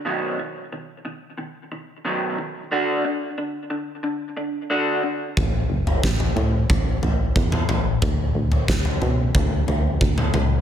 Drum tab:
SD |----------------|----------------|----o-----------|----o-----------|
T2 |----------------|----------------|-------------oo-|-------------oo-|
FT |----------------|----------------|o--o-oo-o-o---o-|o--o-oo-o-o---o-|
BD |----------------|----------------|o---o---o---o---|o---o---o---o---|